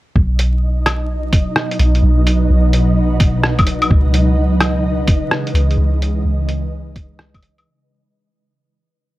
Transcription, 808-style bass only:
0.15 B1
1.79 B1
2.03 B1
2.50 B1
3.90 C#2
5.54 C#2
5.78 C#2
6.25 C#2

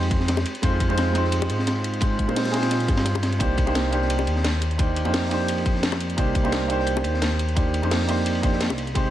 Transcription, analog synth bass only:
Already playing: F2
0.63 F2
1.50 G#2
2.28 A#2
2.88 G2
3.40 C2
4.27 D#2
5.06 F2
6.18 C2
7.04 D#2
7.83 F2
8.70 C2
8.95 C2

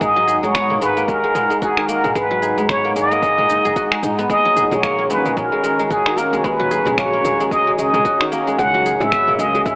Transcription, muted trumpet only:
0.02 D#5
0.44 C#5
0.82 B4
1.09 A#4
1.63 G#4
1.90 A#4
2.16 B4
2.70 C#5
2.96 D#5
4.30 D#5
4.72 C#5
5.10 B4
5.37 A#4
5.91 G#4
6.18 A#4
6.38 C#5
6.44 B4
6.98 C#5
7.51 D#5
7.78 D#5
8.59 F#5
9.01 E5
9.39 D#5
9.66 E5

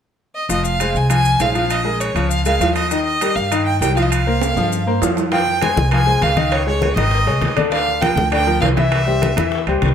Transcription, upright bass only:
0.49 F1
0.95 C2
1.40 A#1
2.15 C#2
2.60 D#2
3.36 G2
3.81 C2
4.56 G2
5.02 F2
5.76 C2
6.21 C#2
6.96 G#1
7.26 C2
7.41 D2
8.16 D2
8.61 C2
9.37 E2
9.67 C#2
9.82 C2

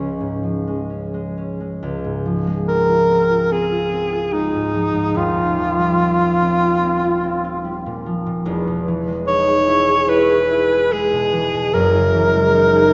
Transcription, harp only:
Already playing: C#2 G#2 F3 G#3 C#4
0.20 G#2
0.43 F3
0.67 G#3
0.90 C#4
1.14 G#3
1.37 C#4
1.60 G#3
1.83 C#2
2.04 G#2
2.25 F3
2.47 G#3
2.68 C4
2.89 F4
3.10 C4
3.31 F4
3.52 C4
3.72 F4
3.92 C4
4.13 F4
4.33 G#3
4.54 G#2
4.73 F3
4.95 G#2
5.14 D#1 D#2
5.37 A#2
5.58 F3
5.80 G3
6.00 C4
6.21 F4
6.42 C4
6.63 F4
6.84 C4
7.04 F4
7.24 C4
7.44 F4
7.64 G3
7.86 A#2
8.06 F3
8.26 A#2
8.45 E1 E2
8.67 B2
8.88 E3
9.08 G#3
9.27 D#4
9.48 G#4
9.68 E4
9.88 G#4
10.09 E4
10.30 G#4
10.51 E4
10.72 G#4
10.93 G#3
11.13 B2
11.33 E3
11.54 B2
11.74 F#1 F#2
11.95 C#3
12.15 E3
12.34 G#3
12.55 D#4
12.76 G#4

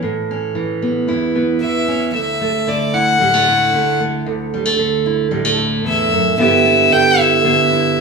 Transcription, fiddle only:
1.62 E5
2.14 E5
2.68 D5
2.94 F#5
5.88 E5
6.40 E5
6.93 G5
7.20 E5

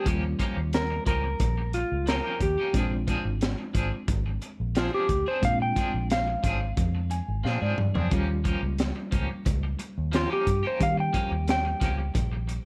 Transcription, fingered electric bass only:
0.06 D#2
0.57 D#2
1.07 C#2
1.40 A#1
1.92 C#2
2.40 D#2
2.74 A#1
3.25 G#1
3.75 G#1
4.08 G#1
4.60 A#1
5.09 D2
5.43 A#2
5.76 muted fingered electric bass stroke
5.94 A#1
6.44 G#1
6.78 F2
7.28 G#1
7.44 A#2
7.62 G#2
7.78 G2
7.96 F2
8.12 D#2
8.63 C#2
9.13 C#2
9.46 C#2
9.98 D#2
10.47 G2
10.81 D#3
11.14 muted fingered electric bass stroke
11.31 D#2
11.81 C#2
12.15 A#1

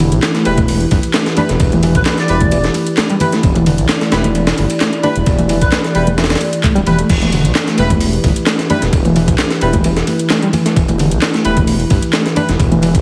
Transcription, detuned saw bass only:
Already playing: E1
0.13 B1
0.46 E1
0.91 G1
1.50 E1
1.60 E1
1.95 B1
2.30 E1
3.44 E1
3.79 B1
4.13 E1
4.58 G1
5.17 E1
5.27 E1
5.62 B1
5.95 E1
6.76 D1
6.87 E1
7.10 E1
7.45 B1
7.79 E1
8.24 G1
8.83 E1
8.93 E1
9.28 B1
9.62 E1
10.76 E1
11.12 B1
11.45 E1
11.91 G1
12.49 E1
12.60 E1
12.95 B1

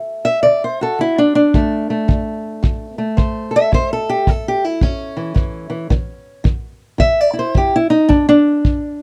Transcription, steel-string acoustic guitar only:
Already playing: D3 A3
0.25 E5
0.43 D3 D5
0.64 C5
0.81 F#4 A4
0.99 D3 E4
1.18 D4
1.35 D4
1.54 D3 A3
1.90 A3
2.08 D3
2.63 D3
2.98 A3
3.17 D3 C5
3.51 A4
3.56 E5
3.72 A2 C5
3.93 A4
4.09 G4
4.27 A2 A4
4.48 G4
4.64 E4
4.82 A2 C#4
5.17 E3
5.34 A2 E3
5.70 E3
5.90 E3
6.44 E3
6.98 E3 E5
7.21 D5
7.33 E4
7.39 C5
7.54 E3 G4
7.76 E4
7.90 D#4
8.09 D4
8.29 D4

